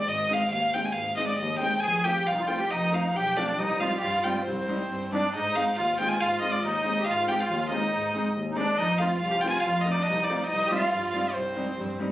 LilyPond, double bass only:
\new Staff \with { instrumentName = "Double bass" } { \clef bass \time 2/4 \key aes \lydian \tempo 4 = 138 aes,,4 ees,4 | aes,,4 ees,4 | f,,4 c,4 | f,,4 b,,4 |
c,4 g,4 | c,4 g,4 | aes,4 ees,4 | aes,4 ees,4 |
aes,4 ees,4 | aes,4 ees,4 | f,4 c,4 | f,4 c,4 |
c,4 g,4 | c,4 g,4 | }